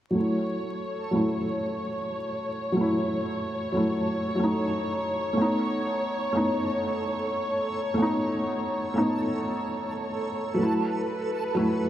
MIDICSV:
0, 0, Header, 1, 4, 480
1, 0, Start_track
1, 0, Tempo, 652174
1, 109, Time_signature, 4, 2, 24, 8
1, 8754, End_track
2, 0, Start_track
2, 0, Title_t, "Violin section"
2, 0, Program_c, 0, 48
2, 108, Note_on_c, 0, 73, 69
2, 7788, Note_on_c, 0, 71, 72
2, 7799, Note_off_c, 0, 73, 0
2, 8754, Note_off_c, 0, 71, 0
2, 8754, End_track
3, 0, Start_track
3, 0, Title_t, "Synth texture"
3, 0, Program_c, 1, 99
3, 105, Note_on_c, 1, 69, 75
3, 8754, Note_off_c, 1, 69, 0
3, 8754, End_track
4, 0, Start_track
4, 0, Title_t, "Felt piano"
4, 0, Program_c, 2, 0
4, 78, Note_on_c, 2, 54, 68
4, 108, Note_on_c, 2, 57, 65
4, 141, Note_on_c, 2, 64, 69
4, 244, Control_c, 2, 64, 127
4, 786, Note_off_c, 2, 54, 0
4, 801, Note_off_c, 2, 57, 0
4, 817, Note_off_c, 2, 64, 0
4, 817, Note_on_c, 2, 54, 73
4, 831, Note_on_c, 2, 57, 69
4, 849, Note_on_c, 2, 64, 85
4, 975, Note_off_c, 2, 54, 0
4, 982, Note_off_c, 2, 57, 0
4, 991, Note_off_c, 2, 64, 0
4, 2004, Note_on_c, 2, 54, 77
4, 2034, Note_on_c, 2, 57, 69
4, 2066, Note_on_c, 2, 64, 92
4, 2709, Note_off_c, 2, 54, 0
4, 2724, Note_off_c, 2, 57, 0
4, 2739, Note_on_c, 2, 54, 69
4, 2740, Note_off_c, 2, 64, 0
4, 2754, Note_on_c, 2, 57, 64
4, 2770, Note_on_c, 2, 64, 78
4, 3193, Note_off_c, 2, 54, 0
4, 3204, Note_off_c, 2, 57, 0
4, 3204, Note_on_c, 2, 54, 75
4, 3212, Note_off_c, 2, 64, 0
4, 3233, Note_on_c, 2, 57, 69
4, 3265, Note_on_c, 2, 63, 83
4, 3909, Note_off_c, 2, 54, 0
4, 3912, Note_off_c, 2, 57, 0
4, 3923, Note_on_c, 2, 57, 72
4, 3939, Note_off_c, 2, 63, 0
4, 3953, Note_on_c, 2, 59, 63
4, 3960, Control_c, 2, 64, 0
4, 3984, Note_on_c, 2, 63, 79
4, 4089, Control_c, 2, 64, 127
4, 4628, Note_off_c, 2, 57, 0
4, 4643, Note_off_c, 2, 59, 0
4, 4656, Note_on_c, 2, 57, 73
4, 4659, Note_off_c, 2, 63, 0
4, 4672, Note_on_c, 2, 59, 69
4, 4688, Note_on_c, 2, 63, 82
4, 4815, Note_off_c, 2, 57, 0
4, 4823, Note_off_c, 2, 59, 0
4, 4831, Note_off_c, 2, 63, 0
4, 5844, Note_on_c, 2, 57, 82
4, 5872, Note_on_c, 2, 59, 68
4, 5904, Note_on_c, 2, 63, 91
4, 6549, Note_off_c, 2, 57, 0
4, 6563, Note_off_c, 2, 59, 0
4, 6578, Note_on_c, 2, 57, 72
4, 6579, Note_off_c, 2, 63, 0
4, 6593, Note_on_c, 2, 59, 72
4, 6606, Note_on_c, 2, 63, 88
4, 7036, Note_off_c, 2, 57, 0
4, 7044, Note_off_c, 2, 59, 0
4, 7050, Note_off_c, 2, 63, 0
4, 7759, Note_on_c, 2, 54, 69
4, 7790, Note_on_c, 2, 57, 62
4, 7799, Control_c, 2, 64, 0
4, 7822, Note_on_c, 2, 64, 77
4, 7940, Control_c, 2, 64, 127
4, 8467, Note_off_c, 2, 54, 0
4, 8482, Note_off_c, 2, 57, 0
4, 8498, Note_off_c, 2, 64, 0
4, 8498, Note_on_c, 2, 54, 78
4, 8512, Note_on_c, 2, 57, 71
4, 8529, Note_on_c, 2, 64, 88
4, 8656, Note_off_c, 2, 54, 0
4, 8663, Note_off_c, 2, 57, 0
4, 8671, Note_off_c, 2, 64, 0
4, 8754, End_track
0, 0, End_of_file